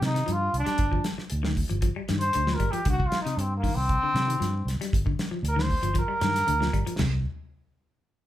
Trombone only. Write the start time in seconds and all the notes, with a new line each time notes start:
0.05 D#4
0.32 F4
0.58 D4
2.20 C5
2.55 A#4
2.71 G4
2.90 F#4
3.06 F4
3.22 D#4
3.40 C4
3.57 A#3
3.75 C4
5.49 A#4
5.63 C5
5.99 A#4